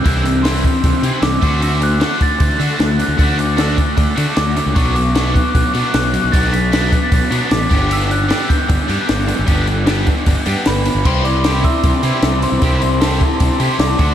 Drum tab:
CC |--------|--------|--------|--------|
HH |oooooooo|oooooooo|oooooooo|oooooooo|
SD |--o---o-|--o---o-|--o---o-|--o---o-|
BD |o--oo--o|---oo---|o--oo---|o--oo---|

CC |--------|--------|--------|x-------|
HH |oooooooo|oooooooo|oooooooo|-ooooooo|
SD |--o---o-|--o---o-|--o---o-|--o---o-|
BD |o--oo--o|---oo---|o--oo---|o--oo---|

CC |--------|
HH |oooooooo|
SD |--o---o-|
BD |o--oo--o|